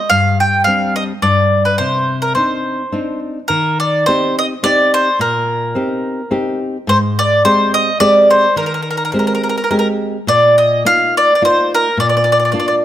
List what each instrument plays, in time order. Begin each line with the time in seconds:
Already playing: mandolin D#5
0.10 nylon-string guitar G2, mandolin F5
0.40 mandolin G5
0.64 nylon-string guitar G3 C4 D4, mandolin F5
0.96 mandolin D#5
1.22 nylon-string guitar G2, mandolin D5
1.65 mandolin B4
1.78 nylon-string guitar C3, mandolin C5
2.22 mandolin A#4
2.35 nylon-string guitar C4 D4 D#4, mandolin C5
2.92 nylon-string guitar C4 D4 D#4
3.48 nylon-string guitar D#3, mandolin A#4
3.80 mandolin D5
4.06 nylon-string guitar C4 D#4 G4, mandolin C5
4.39 mandolin D#5
4.63 nylon-string guitar C4 D#4 G4, mandolin D5
4.94 mandolin C5
5.19 nylon-string guitar A#2, mandolin A#4
5.75 nylon-string guitar C4 D#4 G4
6.31 nylon-string guitar C4 D#4 G4
6.87 nylon-string guitar G#2, mandolin C5
7.19 mandolin D5
7.45 nylon-string guitar G#3 C4 G4, mandolin C5
7.74 mandolin D#5
8.00 nylon-string guitar G#3 C4 G4, mandolin D5
8.31 mandolin C5
8.56 nylon-string guitar D#3, mandolin A#4
8.66 mandolin A#4
8.74 mandolin A#4
8.82 mandolin A#4
8.91 mandolin A#4
8.97 mandolin A#4
9.05 mandolin A#4
9.12 nylon-string guitar G#3 C4 G4, mandolin A#4
9.19 mandolin A#4
9.27 mandolin A#4
9.35 mandolin A#4
9.44 mandolin A#4
9.49 mandolin A#4
9.58 mandolin A#4
9.64 mandolin A#4
9.71 nylon-string guitar G#3 C4 G4, mandolin A#4
9.79 mandolin A#4
10.27 nylon-string guitar A#2, mandolin D5
10.58 mandolin D#5
10.85 nylon-string guitar A#3 D#4 F4, mandolin F5
11.17 mandolin D5
11.35 mandolin D5
11.42 nylon-string guitar A#3 D#4 F4, mandolin C5
11.75 mandolin A#4
11.97 nylon-string guitar A#2, mandolin D5
12.09 mandolin D5
12.17 mandolin D5
12.24 mandolin D5
12.32 mandolin D5
12.40 mandolin D5
12.45 mandolin D5
12.52 nylon-string guitar A#3 D4 F4, mandolin D5
12.60 mandolin D5
12.68 mandolin D5